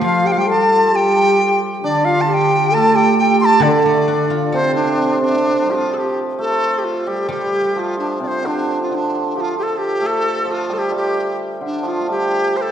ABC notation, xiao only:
X:1
M:2/4
L:1/16
Q:1/4=66
K:none
V:1 name="Xiao"
F G/2 G/2 A2 G3 z | D F G2 A G G2 | D6 z2 | z8 |
z8 | z8 | z8 |]